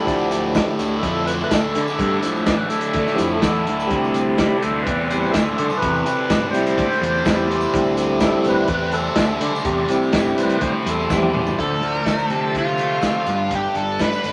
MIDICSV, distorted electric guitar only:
0, 0, Header, 1, 2, 480
1, 0, Start_track
1, 0, Tempo, 480000
1, 72, Time_signature, 4, 2, 24, 8
1, 14325, End_track
2, 0, Start_track
2, 0, Title_t, "Distorted electric guitar"
2, 0, Program_c, 0, 30
2, 0, Note_on_c, 0, 50, 68
2, 0, Note_on_c, 0, 57, 70
2, 0, Note_on_c, 0, 64, 67
2, 61, Note_on_c, 0, 38, 71
2, 290, Note_on_c, 0, 45, 63
2, 541, Note_off_c, 0, 50, 0
2, 545, Note_on_c, 0, 50, 69
2, 798, Note_off_c, 0, 64, 0
2, 802, Note_on_c, 0, 64, 72
2, 1022, Note_off_c, 0, 57, 0
2, 1026, Note_on_c, 0, 57, 71
2, 1266, Note_off_c, 0, 38, 0
2, 1269, Note_off_c, 0, 64, 0
2, 1273, Note_on_c, 0, 64, 73
2, 1493, Note_off_c, 0, 50, 0
2, 1500, Note_off_c, 0, 45, 0
2, 1505, Note_on_c, 0, 50, 65
2, 1733, Note_off_c, 0, 64, 0
2, 1737, Note_on_c, 0, 64, 65
2, 1974, Note_on_c, 0, 38, 69
2, 2228, Note_off_c, 0, 57, 0
2, 2228, Note_on_c, 0, 45, 63
2, 2458, Note_off_c, 0, 50, 0
2, 2470, Note_on_c, 0, 50, 77
2, 2698, Note_off_c, 0, 64, 0
2, 2702, Note_on_c, 0, 64, 66
2, 2962, Note_on_c, 0, 57, 70
2, 3182, Note_off_c, 0, 38, 0
2, 3190, Note_off_c, 0, 64, 0
2, 3194, Note_on_c, 0, 64, 73
2, 3423, Note_off_c, 0, 50, 0
2, 3428, Note_off_c, 0, 45, 0
2, 3435, Note_on_c, 0, 50, 70
2, 3665, Note_off_c, 0, 64, 0
2, 3669, Note_on_c, 0, 64, 66
2, 3912, Note_off_c, 0, 50, 0
2, 3914, Note_on_c, 0, 48, 69
2, 3915, Note_off_c, 0, 57, 0
2, 4150, Note_on_c, 0, 60, 54
2, 4396, Note_off_c, 0, 64, 0
2, 4396, Note_on_c, 0, 64, 77
2, 4623, Note_on_c, 0, 72, 75
2, 4864, Note_on_c, 0, 67, 67
2, 5097, Note_off_c, 0, 72, 0
2, 5101, Note_on_c, 0, 72, 72
2, 5110, Note_off_c, 0, 48, 0
2, 5333, Note_off_c, 0, 64, 0
2, 5337, Note_on_c, 0, 64, 64
2, 5573, Note_off_c, 0, 72, 0
2, 5577, Note_on_c, 0, 72, 68
2, 5816, Note_on_c, 0, 48, 76
2, 6055, Note_off_c, 0, 60, 0
2, 6059, Note_on_c, 0, 60, 66
2, 6297, Note_off_c, 0, 64, 0
2, 6301, Note_on_c, 0, 64, 77
2, 6528, Note_off_c, 0, 72, 0
2, 6532, Note_on_c, 0, 72, 75
2, 6778, Note_off_c, 0, 67, 0
2, 6782, Note_on_c, 0, 67, 71
2, 7015, Note_off_c, 0, 72, 0
2, 7019, Note_off_c, 0, 48, 0
2, 7019, Note_on_c, 0, 72, 73
2, 7247, Note_off_c, 0, 64, 0
2, 7251, Note_on_c, 0, 64, 68
2, 7494, Note_off_c, 0, 72, 0
2, 7498, Note_on_c, 0, 72, 72
2, 7726, Note_on_c, 0, 48, 68
2, 7960, Note_off_c, 0, 60, 0
2, 7964, Note_on_c, 0, 60, 69
2, 8198, Note_off_c, 0, 64, 0
2, 8202, Note_on_c, 0, 64, 85
2, 8455, Note_off_c, 0, 72, 0
2, 8459, Note_on_c, 0, 72, 72
2, 8696, Note_off_c, 0, 67, 0
2, 8700, Note_on_c, 0, 67, 66
2, 8932, Note_off_c, 0, 48, 0
2, 8932, Note_off_c, 0, 72, 0
2, 8936, Note_on_c, 0, 72, 76
2, 9160, Note_off_c, 0, 64, 0
2, 9172, Note_on_c, 0, 64, 71
2, 9392, Note_off_c, 0, 72, 0
2, 9404, Note_on_c, 0, 72, 75
2, 9656, Note_on_c, 0, 48, 69
2, 9892, Note_off_c, 0, 60, 0
2, 9896, Note_on_c, 0, 60, 67
2, 9899, Note_off_c, 0, 67, 0
2, 10122, Note_off_c, 0, 64, 0
2, 10134, Note_on_c, 0, 64, 71
2, 10372, Note_off_c, 0, 72, 0
2, 10384, Note_on_c, 0, 72, 74
2, 10632, Note_on_c, 0, 67, 66
2, 10851, Note_off_c, 0, 72, 0
2, 10858, Note_off_c, 0, 48, 0
2, 10863, Note_on_c, 0, 72, 74
2, 11093, Note_off_c, 0, 64, 0
2, 11098, Note_off_c, 0, 60, 0
2, 11105, Note_on_c, 0, 64, 71
2, 11322, Note_off_c, 0, 72, 0
2, 11334, Note_on_c, 0, 72, 74
2, 11577, Note_off_c, 0, 72, 0
2, 11583, Note_off_c, 0, 64, 0
2, 11587, Note_off_c, 0, 67, 0
2, 11588, Note_on_c, 0, 38, 53
2, 11807, Note_on_c, 0, 50, 45
2, 12052, Note_on_c, 0, 57, 55
2, 12304, Note_on_c, 0, 60, 48
2, 12531, Note_off_c, 0, 50, 0
2, 12543, Note_on_c, 0, 50, 53
2, 12769, Note_off_c, 0, 57, 0
2, 12781, Note_on_c, 0, 57, 51
2, 12788, Note_off_c, 0, 38, 0
2, 13008, Note_off_c, 0, 60, 0
2, 13020, Note_on_c, 0, 60, 51
2, 13250, Note_on_c, 0, 43, 50
2, 13264, Note_off_c, 0, 60, 0
2, 13265, Note_off_c, 0, 57, 0
2, 13266, Note_off_c, 0, 50, 0
2, 13486, Note_off_c, 0, 43, 0
2, 13498, Note_on_c, 0, 43, 52
2, 13748, Note_on_c, 0, 55, 52
2, 13993, Note_on_c, 0, 59, 60
2, 14216, Note_on_c, 0, 62, 54
2, 14325, Note_off_c, 0, 43, 0
2, 14325, Note_off_c, 0, 55, 0
2, 14325, Note_off_c, 0, 59, 0
2, 14325, Note_off_c, 0, 62, 0
2, 14325, End_track
0, 0, End_of_file